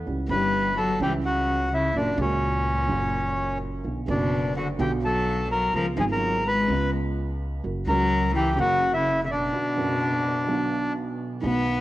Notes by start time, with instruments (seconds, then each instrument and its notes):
0.06 upright piano C#2 C#3 E3 G3 C#4 G4, upright bass C#2
0.28 upright bass G1, upright piano G1 G2 E3 G3 C#4, cello G3, bandoneon B4 B5
0.33 upright piano G4
0.77 cello F#3, bandoneon A4 A5
0.99 upright bass C#2, upright piano C#2 C#3 E3 G3 C#4 E4, cello E3, bandoneon G4 G5
1.24 cello C#3, bandoneon F#4 F#5
1.73 cello C#3, bandoneon E4 E5
1.94 upright bass F#1, upright piano F#2 C#3 F#3 A#3 F#4, cello A#2, bandoneon D4 D5
2.17 upright bass C#2, upright piano C#2 C#3 F#3 A#3, bandoneon C#4 C#5
2.21 cello A#2, upright piano F#4
2.87 upright bass F#1, upright piano F#2 C#3 F#3 A#3
2.91 upright piano F#4
3.84 upright bass B1, upright piano B1 B2 D3 F#3 B3 F#4
4.06 upright bass F#1, upright piano F#1 F#2 D3 F#3 B3, cello B2
4.10 bandoneon D4 D5, upright piano F#4
4.57 cello D3, bandoneon F#4 F#5
4.77 upright bass B1, upright piano B1 B2 D3 F#3 B3 F#4, cello D3, bandoneon G5
4.82 bandoneon G4
5.03 cello F#3, bandoneon A4 A5
5.50 cello F#3, bandoneon A#4 A#5
5.73 upright bass C#2, upright piano C#2 C#3 G#3 B3 F4, cello F3, bandoneon A#4 A#5
5.95 upright bass G#1, upright piano G#1 G#2 C#3 G#3 B3 F4, cello F3
6.00 bandoneon G#4 G#5
6.11 cello F#3, bandoneon A#4 A#5
6.47 cello G#3, bandoneon B4 B5
6.67 upright bass C#2, upright piano C#2 C#3 G#3 B3 F4
7.63 upright bass F#1, upright piano F#2 C#3 F#3 A#3 F#4
7.87 upright bass C#2, upright piano C#2 C#3 F#3 A#3 F#4, cello F#3, bandoneon A#4 A#5
8.35 cello E3, bandoneon G4 G5
8.56 upright bass F#1, upright piano F#2 C#3 F#3 A#3, cello C#3
8.60 upright piano F#4, bandoneon F#4 F#5
8.94 cello C#3, bandoneon E4 E5
9.24 cello C#3, bandoneon E5
9.30 cello B2, bandoneon D4 D5
9.53 upright piano B1 B2 D3 F#3 B3 F#4
9.75 upright piano F#1 F#2 D3 F#3 B3 F#4
10.46 upright piano B1 B2 D3 F#3 B3 F#4
11.41 upright piano B1 B2 D#3 F#3 D#4 F#4, upright bass B1, cello B3